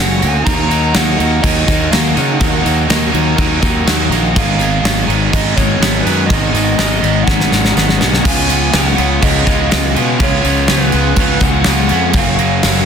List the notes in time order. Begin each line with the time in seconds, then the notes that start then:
Already playing: C#3 F#3 A#3 C#4 F#4 F#5
0.00 F#1 F#3 A#3 C#4
0.20 D2 F#3 A#3 C#4 F#4 G#5, tambourine, crash
0.44 D#2 D#3 F#3 A#3 D#4 F#4 A#5, kick, tambourine, crash
0.69 D#3 F#3 A#3 D#4, tambourine, crash
0.93 D#2 D#3 F#3 A#3 D#4 F#4 F#5, snare, tambourine, crash
1.18 D#2 D#3 F#3 A#3 D#4, tambourine, crash
1.42 D#2 D#3 F#3 A#3 D#4 F#4 D#5, kick, tambourine, crash
1.66 D#2 D#3 F#3 A#3 D#4 F#4, kick, tambourine, crash
1.91 D#2 D#3 F#3 A#3 D#4 F5, snare, tambourine, crash
2.15 C#3 D#3 F#3 A#3 D#4 F#4 F#5, tambourine, crash
2.39 D#2 D#3 F#3 A#3 D#4 F#4, kick, tambourine, crash
2.63 D#2 D#3 F#3 A#3 D#4, tambourine, crash
2.87 D#2 D#3 F#3 A#3 D#4 F#4, snare, tambourine, crash
3.11 D#2 D#3 F#3 A#3 D#4, tambourine, crash
3.36 D#2 D#3 F#3 A#3 D#4 F#4, kick, tambourine, crash
3.61 D#2 D#3 F#3 A#3 D#4 F#4, kick, tambourine, crash
3.86 D#2 D#3 F#3 A#3 D#4, snare, tambourine, crash
4.09 A#1 D#3 A#3 D#4 F#4, tambourine, crash
4.14 F#3
4.35 G#1 G#2 D#3 G#3 B3 D#4 G#4 F5, kick, tambourine, crash
4.59 G#2 D#3 G#3 B3 D#4, tambourine, crash
4.84 G#1 G#2 D#3 G#3 B3 D#4 G#4, snare, tambourine, crash
5.08 G#1 G#2 D#3 G#3 B3 D#4, tambourine, crash
5.32 G#1 G#2 D#3 G#3 B3 D#4 G#4 D#5, kick, tambourine, crash
5.56 G#1 G#2 D#3 G#3 B3 D#4 G#4 C#5, kick, tambourine, crash
5.80 G#1 G#2 D#3 G#3 B3 D#4, snare, tambourine, crash
6.03 F#2 G#2 B3 D#4 G#4 B4
6.07 D#3 G#3, tambourine, crash
6.26 G#2 D#3 D#5
6.30 G#1 G#3 B3 D#4 G#4, kick, tambourine, crash
6.53 G#1 G#2 D#3 G#3 B3 D#4, tambourine, crash
6.77 G#1 G#2 D#3 G#3 B3 D#4 G#4, snare, tambourine, crash
7.02 G#1 G#2 D#3 G#3 B3 D#4, tambourine, crash
7.23 G#2 D#3 G#3 F#5
7.27 G#1 B3 D#4 G#4, kick, snare, tambourine
7.40 snare
7.50 G#1 G#2 D#3 G#3 B3 D#4 G#4, snare, tambourine
7.65 snare
7.75 G#1 G#2 D#3 G#3 B3 D#4, snare, tambourine
7.89 snare
7.99 B1 G#2 D#3 G#3 B3 D#4 G#4 F#5, snare, tambourine
8.14 snare
8.23 C#2 C#3 F3 G#3 B3 C#4 F4 G#4 G#5, kick, crash, tambourine
8.48 C#3 G#3 B3 C#4 F4, tambourine, crash
8.72 C#2 C#3 F3 G#3 B3 C#4 F4 G#4 F#5, snare, tambourine, crash
8.96 C#2 C#3 G#3 B3 C#4 F4, crash
9.20 C#2 C#3 F3 G#3 B3 C#4 F4 D#5, kick, tambourine, crash
9.25 G#4
9.45 C#2 C#3 G#3 B3 C#4 F4 G#4, kick, tambourine, crash
9.69 C#2 C#3 G#3 B3 C#4 F4, snare, tambourine, crash
9.95 B2 C#3 G#3 B3 C#4 F4 G#4, crash
10.18 C#2 C#3 F3 G#3 B3 C#4 F4 G#4 C#5, kick, tambourine, crash
10.43 C#2 C#3 G#3 B3 F4, tambourine, crash
10.47 C#4
10.67 C#2 C#3 F3 G#3 B3 C#4 G#4 B4, snare, tambourine, crash
10.71 F4
10.92 C#2 C#3 G#3 B3 C#4 F4, tambourine, crash
11.16 C#2 C#3 F3 G#3 B3 C#4 F4 G#4, kick, tambourine, crash
11.40 C#2 C#3 C#4 F4 G#4 F#5, kick, tambourine, crash
11.44 G#3 B3
11.64 C#2 C#3 G#3 B3 C#4, snare, tambourine, crash
11.69 F4
11.88 F2 C#3 B3 C#4 F4 G#4, crash
11.93 G#3
12.13 F#1 F#2 C#3 F#3 A#3 F#4 F5, kick, tambourine, crash
12.17 C#4
12.38 F#2 C#3 F#3 A#3 C#4, crash
12.63 F#1 F#2 C#3 F#3 A#3 C#4 F#4, snare, tambourine, crash